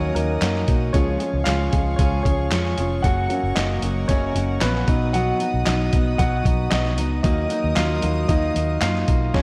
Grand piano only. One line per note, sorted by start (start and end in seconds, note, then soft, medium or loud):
0.00 0.15 F#3 medium
0.00 0.16 A#3 soft
0.00 0.95 C#4 medium
0.00 0.16 D#4 medium
0.00 0.93 C#5 medium
0.00 0.96 D#5 medium
0.15 0.39 F#3 soft
0.15 0.65 A#3 medium
0.15 0.40 D#4 medium
0.15 0.64 A#4 medium
0.93 1.69 F3 medium
0.93 1.69 G#3 soft
0.93 1.44 C#4 medium
0.93 1.42 C#5 medium
1.44 1.96 F4 medium
1.44 2.00 F5 medium
1.72 1.96 F3 soft
1.72 1.97 G#3 soft
1.72 1.97 C#4 soft
1.96 2.24 C#4 medium
1.96 2.21 C#5 medium
2.23 2.75 C#4 medium
2.23 2.73 C#5 medium
3.02 3.54 F#4 medium
3.02 3.58 F#5 medium
3.30 4.84 F#3 soft
3.30 4.84 A#3 soft
3.30 4.09 C#4 medium
3.55 4.06 D#4 medium
3.55 4.10 D#5 medium
4.08 4.59 C#4 medium
4.08 4.63 C#5 medium
4.61 4.87 B3 medium
4.61 4.98 B4 medium
4.88 5.63 F#3 medium
4.88 5.63 B3 soft
4.88 5.63 D#4 medium
5.13 5.64 F#4 medium
5.13 5.68 F#5 loud
5.66 6.16 D#4 medium
5.66 6.20 D#5 medium
6.18 6.69 F#4 medium
6.18 6.73 F#5 loud
6.70 7.09 D#4 medium
6.70 7.08 D#5 medium
7.23 8.01 F#3 medium
7.23 8.02 A#3 soft
7.23 7.74 D#4 medium
7.23 7.72 D#5 medium
7.76 8.26 F4 medium
7.76 8.30 F5 medium
8.03 8.27 F#3 soft
8.03 8.27 A#3 soft
8.03 8.27 D#4 soft
8.28 8.79 D#4 medium
8.28 8.83 D#5 medium
8.81 9.31 F4 medium
8.81 9.36 F5 medium
9.34 9.42 F3 medium
9.34 9.42 G#3 medium
9.34 9.42 C#4 medium
9.34 9.42 C#5 medium